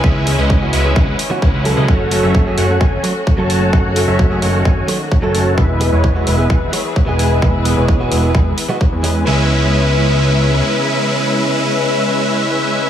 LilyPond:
<<
  \new Staff \with { instrumentName = "Supersaw synth" } { \time 4/4 \key cis \minor \tempo 4 = 130 <gis cis' e' b' e''>8. <gis cis' e' b' dis''>8. <gis cis' e' b' e''>8 <gis cis' e' b' fis''>8 r8 <gis cis' e' b' fis''>16 <gis cis' e' b' fis''>8 <gis cis' e' b' dis''>16 | <a cis' fis' cis'' fis''>8. <a cis' fis' cis'' e''>8. <a cis' fis' cis'' fis''>8 <a cis' fis' cis'' gis''>8 r8. <a cis' fis' cis'' a''>8. | <a cis' fis' cis'' fis''>8. <a cis' fis' cis'' e''>8. <a cis' fis' cis'' fis''>8 <a cis' fis' cis'' gis''>8 r8. <a cis' fis' cis'' a''>8. | <gis b e' b' e''>8. <gis b e' b' cis''>8. <gis b e' b' e''>8 <gis b e' b' fis''>8 r8. <gis b e' b' gis''>8. |
<gis b e' b' e''>8. <gis b e' b' cis''>8. <gis b e' b' e''>8 <gis b e' b' fis''>8 r8. <gis b e' b' gis''>8. | <gis cis' e' b' e''>1~ | <gis cis' e' b' e''>1 | }
  \new Staff \with { instrumentName = "String section" } { \time 4/4 \key cis \minor << { <cis gis e'>1 | <a fis'>1~ | <a fis'>1 | <e e' b'>1~ |
<e e' b'>1 | <cis cis' e' b'>1~ | <cis cis' e' b'>1 | } \\ { cis'1~ | cis'1 | dis1 | gis'1~ |
gis'1 | r1 | r1 | } >> }
  \new Staff \with { instrumentName = "Clean electric guitar" } { \time 4/4 \key cis \minor <e b cis' gis'>8 <e b cis' gis'>8. <e b cis' fis'>8 <e b cis' gis'>16 r8. <e b cis' fis'>16 r8 <fis a cis' a'>8~ | <fis a cis' a'>8 <fis a cis' a'>8. <fis a cis' gis'>8 <fis a cis' a'>16 r8 <fis a cis' cis''>16 r8 <fis a cis' a'>8.~ | <fis a cis' a'>8 <fis a cis' a'>8. <fis a cis' gis'>8 <fis a cis' a'>16 r8 <fis a cis' cis''>16 r8 <fis a cis' a'>8. | r8 <e gis b gis'>8. <e gis b fis'>8 <e gis b gis'>16 r8 <e gis b cis''>16 r8 <e gis b gis'>8.~ |
<e gis b gis'>8 <e gis b gis'>8. <e gis b fis'>8 <e gis b gis'>16 r8. <e gis b fis'>16 r8 <e b cis' gis'>8 | <e b cis' gis'>1~ | <e b cis' gis'>1 | }
  \new Staff \with { instrumentName = "Analog synth bass" } { \clef bass \time 4/4 \key cis \minor cis,8. cis,8. cis,8 cis,8 r8 cis,16 cis,8 cis,16 | fis,,8. fis,,8. fis,,8 fis,,8 r8. fis,,8. | fis,,8. fis,,8. fis,,8 fis,,8 r8. fis,,8. | e,,8. e,,8. e,,8 e,,8 r8. e,,8. |
e,,8. e,,8. e,,8 e,,8 r8. e,8. | cis,2. r4 | r1 | }
  \new DrumStaff \with { instrumentName = "Drums" } \drummode { \time 4/4 bd8 hho8 bd8 hho8 bd8 hho8 bd8 hho8 | bd8 hho8 bd8 hho8 bd8 hho8 bd8 hho8 | bd8 hho8 bd8 hho8 bd8 hho8 bd8 hho8 | bd8 hho8 bd8 hho8 bd8 hho8 bd8 hho8 |
bd8 hho8 bd8 hho8 bd8 hho8 bd8 hho8 | r4 r4 r4 r4 | r4 r4 r4 r4 | }
>>